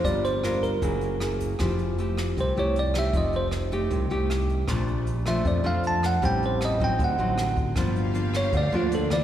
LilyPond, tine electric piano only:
\new Staff \with { instrumentName = "Tine electric piano" } { \time 4/4 \key f \major \tempo 4 = 156 d''8 c''4 bes'2 r8 | r2 c''8 des''8 d''8 e''8 | ees''8 c''8 r2. | r4. e''8 d''8 f''8 a''8 ges''8 |
g''8 c''8 ees''8 g''8 fis''4. r8 | r4. des''8 d''8 f'8 a'8 d''8 | }